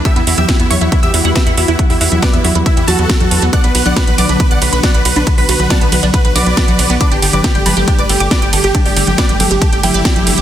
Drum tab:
RD |----------------|----------------|x-x-x-x-x-x-x-x-|x-x-x-x-x-x-x-x-|
HH |xxoxxxoxxxoxxxox|xooxxxoxxxoxxxox|xxoxxxoxxxoxxxox|xooxxxoxxxoxxxox|
SD |----o-------o---|----o-------o---|----o-------o---|----o-------o---|
CG |---o--o---------|---o--o---o--o--|---o--o---------|---o--o---o--o--|
BD |o---o---o---o---|o---o---o---o---|o---o---o---o---|o---o---o---o---|

RD |x-x-x-x-x-x-x-x-|x-x-x-x-x-x-x-x-|
HH |xxoxxxoxxxoxxxox|xooxxxoxxxoxxxox|
SD |----o-------o---|----o-------o---|
CG |---o--o---------|---o--o---o--o--|
BD |o---o---o---o---|o---o---o---o---|